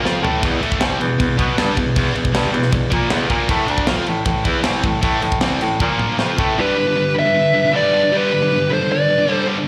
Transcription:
0.04 F2 F3 C4 F4, snare
0.22 A2 E3 A3, floor tom
0.43 E2 B2 E3, kick, crash
0.61 A2 E3 A3, crash
0.72 kick
0.80 C2 C3 G3 C4, snare, crash
1.00 E2 B2, crash
1.20 E2 B2, kick, crash
1.38 B2 F#3 B3, kick, crash
1.57 G2 D3 G3, snare, crash
1.77 E2 B2, kick, crash
1.96 E2 B2 E3, kick, crash
2.14 E2 B2, crash
2.25 kick
2.34 G2 D3 G3, snare, crash
2.52 E2 B2, crash
2.62 snare
2.72 E2 B2, kick, crash
2.90 A#2 F3 A#3, kick, crash
3.09 E2 B2 E3, snare, crash
3.29 A#2 F3 A#3, kick, crash
3.48 A2 E3 A3, kick, crash
3.68 D2 D3 A3 D4, crash
3.78 kick
3.86 F2 F3 C4 F4, snare, crash
4.06 A2 E3, crash
4.25 A2 E3, kick, crash
4.44 E2 E3 B3 E4, kick, crash
4.63 C2 C3 G3 C4, snare, crash
4.82 A2 E3, kick, crash
5.01 A2 E3 A3, kick, crash
5.21 A2 E3, crash
5.32 kick
5.41 C2 C3 G3 C4, snare, crash
5.60 A2 E3, crash
5.80 A#2 F3 A#3, kick
5.99 mid tom
6.19 F2 F3 C4 F4, snare
6.38 A2 E3 A3, kick
6.56 G2 D3 G3 G4
6.61 B4
6.77 G2 D3
6.87 G2 D3
6.97 G2 D3
7.16 G2 D3 B4 E5
7.25 G2 D3
7.35 G2 D3
7.55 G2 D3
7.62 G2 D3
7.72 G2 D3 G3 B4
7.76 D5
7.92 G2 D3 G3
8.02 G2 D3
8.12 G2 D3 G3 G4
8.17 B4
8.32 G2 D3
8.42 G2 D3
8.50 G2 D3
8.70 G2 D3 A4 C5
8.79 G2 D3
8.89 G2 D3 B4 D5
9.08 G2 D3
9.18 G2 D3
9.26 G2 D3 G3
9.32 A4 C5
9.46 G2 D3 G3
9.56 G2 D3

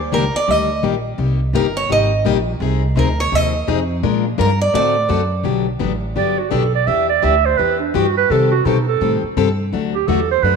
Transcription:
Already playing: D#2
0.12 C#2 D#3 G3 A#3 D4 G4 A#4
0.35 D5, muted upright bass stroke
0.48 D2 D#3 G3 A#3 D4 G4 D#5
0.83 A#1 D#3 G3 A#3 D4 G4
1.18 C2 C3 G3 A#3 D#4 G4
1.53 G1 C3 G3 A#3 D#4 G4 A#4
1.77 C#5
1.89 G#1 C3 G3 A#3 D#4 G4 D#5
2.25 A#1 C3 G3 A#3 D#4 G4
2.60 C2 C3 F3 C4 D#4 G#4
2.96 D2 C3 F3 C4 D#4 G#4 A#4
3.20 C#5
3.32 D#2 C3 F3 C4 D#4 G#4 D#5
3.67 F2 C3 F3 C4 D#4 G#4
4.03 A#2 F3 G#3 D4 F4 A#4
4.38 G2 F3 G#3 D4 F4 A#4
4.61 D5
4.73 A2 D3 A3 C4 F#4 A4 D5
5.09 F#2 D3 A3 C4 F#4 A4
5.44 B1 D3 F#3 B3 D4 G4
5.79 A1 D3 F#3 B3 D4 G4
6.16 G1 D3 F#3 B3 D4 G4 D5
6.39 F#4
6.50 B1 D3 F#3 B3 D4 G4 A4
6.75 D5
6.87 E2 E3 B3 D4 G4 E5
7.09 D5
7.22 D2 E3 B3 D4 G4 E5
7.45 C5
7.58 E2 E3 B3 D4 G4 B4
7.79 D4
7.94 G2 E3 B3 D4 F#4 G4
8.17 B4
8.30 C3 D#3 G3 C4 G4 A4
8.52 F#4
8.65 B2 C3 D#3 G3 C4 D#4 G4 A4
8.88 A4
9.01 A2 C3 D#3 G3 C4 G4 A4
9.23 muted upright bass stroke
9.37 G2 C3 D#3 G3 C4 G4 A4
9.73 D2 D3 F#3 A3 D4 F#4
9.95 G4
10.07 E2 D3 F#3 A3 D4 F#4 A4
10.31 C5
10.42 F#2 D3 F#3 A3 D4 F#4 B4

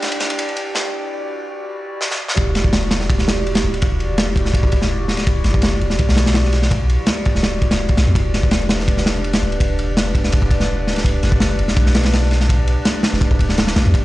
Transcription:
Already playing: G5
0.02 D4 E4 G4 D5, snare, ride
0.12 ride
0.20 snare, ride
0.30 ride
0.39 ride
0.49 ride
0.57 ride
0.75 snare, ride
0.92 E4 F#4 G4 D5
1.47 E4 F#4 G4 D5
2.01 snare
2.11 snare
2.28 snare
2.37 E1 E4 F#4 G4 D5, kick, ride
2.55 snare, ride
2.64 kick
2.73 snare, ride
2.82 ride
2.91 E4 F#4 G4 D5, snare, ride
3.00 snare
3.10 kick, ride
3.18 snare
3.28 snare, ride
3.37 ride
3.46 ride
3.55 snare, ride
3.64 D1, ride
3.74 ride
3.82 E1 E4 F#4 G4 D5, kick, ride
4.00 ride
4.18 snare, ride
4.36 E1 E4 F#4 G4 D5, kick, ride
4.45 snare
4.54 kick, ride
4.63 kick
4.72 kick, ride
4.82 snare
5.08 D1, snare
5.17 snare, ride
5.27 E4 F#4 G4 D5, kick, ride
5.44 F#1, snare, ride
5.54 kick
5.62 snare, ride
5.71 ride
5.81 E1 E4 F#4 G4 D5, ride
5.90 snare
5.99 B1, kick, ride
6.09 snare
6.17 snare, ride
6.26 snare, ride
6.34 snare, ride
6.44 snare
6.53 snare, ride
6.62 snare
6.71 E4 F#4 G4 D5, kick, ride
6.89 ride
7.06 snare, ride
7.25 E4 F#4 G4 D5, kick, ride
7.35 D1, snare
7.43 snare, ride
7.62 kick, ride
7.71 snare, ride
7.89 kick, ride
7.97 B1, snare, ride
8.07 E2
8.15 E1 D4 G4 B4 D5, kick, ride
8.34 snare, ride
8.43 kick
8.51 snare, ride
8.62 ride
8.69 D4 G4 B4 D5, snare, ride
8.80 snare
8.88 kick, ride
8.97 snare
9.06 snare, ride
9.16 ride
9.24 ride
9.33 snare, ride
9.43 D1, ride
9.52 ride
9.60 E1 D4 G4 B4 D5, kick, ride
9.79 ride
9.97 snare, ride
10.15 E1 D4 G4 B4 D5, kick, ride
10.24 snare
10.32 kick, ride
10.42 kick
10.51 kick, ride
10.60 snare
10.87 D1, snare
10.96 snare, ride
11.05 D4 G4 B4 D5, kick, ride
11.23 F#1, snare, ride
11.32 kick
11.40 snare, ride
11.50 ride
11.59 E1 D4 G4 B4 D5, ride
11.68 snare
11.76 B1, kick, ride
11.86 snare
11.95 snare, ride
12.03 snare, ride
12.13 snare, ride
12.23 snare
12.31 snare, ride
12.40 snare
12.49 D4 G4 B4 D5, kick, ride
12.67 ride
12.85 snare, ride
13.03 D4 G4 B4 D5, snare, ride
13.13 D1, snare
13.21 kick, ride
13.31 kick
13.39 kick, ride
13.49 snare
13.58 snare, ride
13.67 snare, ride
13.76 B1, snare, ride
13.85 E2, ride
13.94 E1 E4 F#4 G4 D5, kick, ride

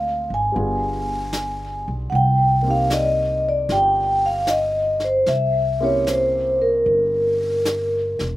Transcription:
Already playing: D2 D3 G#3 C4 F4 G#4 F5
0.30 G#1 G#5
0.52 G1 G3 B3 D4, brush sweep
0.56 F4 G#4
1.33 snare, hi-hat pedal
1.88 B1
2.10 C2 F#5, brush sweep
2.15 G5
2.62 A#3 C4
2.67 D#4 G4 F5
2.90 D5 D#5, snare, hi-hat pedal
3.49 D5
3.69 G1 F4 G4 G5, brush sweep, snare
4.26 F5
4.47 D#5, snare, hi-hat pedal
5.00 snare
5.04 C5
5.26 C2 E5, brush sweep, snare
5.80 A#3 C4 C#4 E4 G4 C#5
6.07 C5, snare, hi-hat pedal
6.62 A#4
6.86 G1, brush sweep
7.65 snare, hi-hat pedal
8.19 E1, snare

